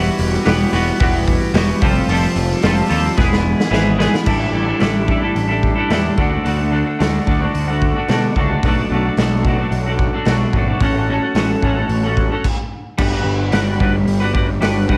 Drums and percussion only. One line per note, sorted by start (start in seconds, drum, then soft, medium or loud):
0.19 open hi-hat medium
0.33 snare soft
0.46 snare loud
0.46 open hi-hat medium
0.73 snare soft
0.73 open hi-hat medium
1.00 kick loud
1.00 open hi-hat medium
1.28 kick medium
1.28 open hi-hat medium
1.54 snare loud
1.54 open hi-hat medium
1.82 kick loud
1.82 open hi-hat medium
2.09 open hi-hat medium
2.36 open hi-hat medium
2.51 snare soft
2.62 snare loud
2.62 open hi-hat medium
2.90 open hi-hat medium
3.18 kick loud
3.18 snare medium
3.33 snare medium
3.60 snare medium
3.73 snare medium
4.00 snare loud
4.14 snare loud
4.26 kick medium
4.26 crash medium
4.80 snare loud
4.80 open hi-hat soft
5.08 kick medium
5.36 open hi-hat soft
5.63 kick medium
5.90 snare loud
5.90 open hi-hat soft
6.18 kick medium
6.46 open hi-hat soft
7.00 snare loud
7.00 open hi-hat soft
7.27 kick medium
7.55 open hi-hat soft
7.82 kick medium
8.08 snare medium
8.08 open hi-hat soft
8.36 kick medium
8.63 kick loud
8.63 open hi-hat soft
9.17 snare loud
9.17 open hi-hat soft
9.45 kick medium
9.72 open hi-hat soft
9.99 kick medium
10.25 snare loud
10.25 open hi-hat soft
10.53 kick medium
10.80 kick loud
10.80 open hi-hat medium
11.35 snare loud
11.35 open hi-hat soft
11.62 kick medium
11.89 open hi-hat soft
12.17 kick medium
12.44 kick medium
12.44 crash medium
12.98 kick loud
12.98 crash loud
13.52 snare loud
13.52 open hi-hat medium
13.80 kick medium
14.07 open hi-hat medium
14.35 kick medium
14.62 snare loud
14.62 open hi-hat medium
14.89 kick medium